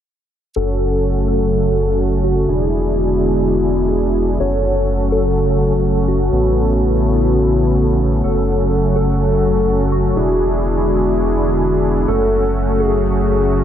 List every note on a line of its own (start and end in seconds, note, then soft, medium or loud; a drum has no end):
0.56 2.46 F#1 medium
0.56 2.46 C#3 medium
0.56 2.46 F#3 medium
0.56 2.46 A3 medium
0.56 2.45 C#4 medium
0.56 2.46 F#4 medium
0.56 2.45 F#4 medium
0.56 1.19 A4 loud
0.56 2.45 A4 medium
0.56 shaker medium
0.68 shaker soft
0.93 shaker medium
1.04 shaker medium
1.16 shaker soft
1.28 2.15 A4 medium
1.40 shaker medium
1.52 shaker medium
1.64 shaker soft
1.89 shaker medium
2.00 shaker medium
2.12 shaker soft
2.24 4.31 F#4 loud
2.36 shaker medium
2.48 4.38 E1 medium
2.48 4.38 D3 medium
2.48 4.38 G#3 medium
2.48 4.38 B3 medium
2.48 4.37 D4 medium
2.48 4.37 E4 medium
2.48 4.38 E4 medium
2.48 4.37 G#4 medium
2.48 shaker medium
2.60 shaker soft
2.84 shaker medium
2.96 shaker medium
3.08 shaker soft
3.33 shaker medium
3.44 shaker medium
3.57 shaker soft
3.81 shaker medium
3.92 shaker medium
4.05 shaker soft
4.29 shaker medium
4.40 6.30 F#1 medium
4.40 6.30 C#3 medium
4.40 6.30 F#3 medium
4.40 8.20 A3 medium
4.40 6.29 C#4 medium
4.40 6.29 F#4 medium
4.40 6.30 F#4 medium
4.40 6.29 A4 medium
4.40 5.03 C#5 loud
4.40 shaker medium
4.53 shaker soft
4.76 shaker medium
4.88 shaker medium
5.01 shaker soft
5.12 5.99 A4 medium
5.25 shaker medium
5.36 shaker medium
5.49 shaker soft
5.72 shaker medium
5.84 shaker medium
5.97 shaker soft
6.08 8.15 F#4 loud
6.20 shaker medium
6.31 8.22 A1 medium
6.31 10.12 C#3 medium
6.31 8.21 B3 medium
6.31 8.22 B3 medium
6.31 8.21 C#4 medium
6.31 8.22 E4 medium
6.31 8.21 A4 medium
6.31 shaker medium
6.45 shaker soft
6.68 shaker medium
6.80 shaker medium
6.93 shaker soft
7.17 shaker medium
7.29 shaker medium
7.41 shaker soft
7.65 shaker medium
7.76 shaker medium
7.88 shaker soft
8.12 shaker medium
8.24 10.14 F#1 medium
8.24 10.14 F#3 medium
8.24 10.14 A3 medium
8.24 10.13 C#4 medium
8.24 10.13 F#4 medium
8.24 10.14 F#4 medium
8.24 8.87 A4 loud
8.24 10.13 A4 medium
8.24 shaker medium
8.36 shaker soft
8.60 shaker medium
8.72 shaker medium
8.85 shaker soft
8.96 9.83 A4 loud
9.09 shaker medium
9.20 shaker medium
9.33 shaker soft
9.56 shaker medium
9.67 shaker medium
9.80 shaker soft
9.92 11.99 F#4 loud
10.05 shaker medium
10.16 12.06 E1 medium
10.16 12.06 D3 medium
10.16 12.06 G#3 medium
10.16 12.06 B3 medium
10.16 12.05 D4 medium
10.16 12.06 E4 medium
10.16 12.05 E4 medium
10.16 12.05 G#4 medium
10.16 shaker medium
10.29 shaker soft
10.52 shaker medium
10.63 shaker medium
10.76 shaker soft
11.00 shaker medium
11.12 shaker medium
11.25 shaker soft
11.48 shaker medium
11.60 shaker medium
11.72 shaker soft
11.96 shaker medium
12.08 13.64 F#1 medium
12.08 13.64 C#3 medium
12.08 13.64 F#3 medium
12.08 13.64 A3 medium
12.08 13.64 C#4 medium
12.08 13.64 F#4 medium
12.08 12.81 A4 loud
12.08 shaker medium
12.21 shaker soft
12.44 shaker medium
12.56 shaker medium
12.68 shaker soft
12.80 13.64 G#4 loud
12.93 shaker medium
13.04 shaker medium
13.16 shaker soft
13.41 shaker medium
13.52 shaker medium